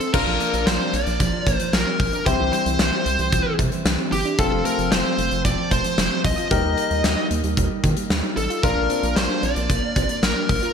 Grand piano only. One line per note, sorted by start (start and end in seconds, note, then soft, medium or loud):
0.14 2.22 D4 medium
0.14 2.22 F4 medium
0.14 2.22 A#4 medium
2.26 4.35 C4 medium
2.26 4.35 E4 medium
2.26 4.35 G4 medium
4.39 6.47 C4 medium
4.39 6.47 F4 medium
4.39 6.47 A4 medium
6.51 8.59 D#4 medium
6.51 8.59 G4 medium
6.51 8.59 A#4 medium
8.63 10.72 D4 medium
8.63 10.72 F4 medium
8.63 10.72 A#4 medium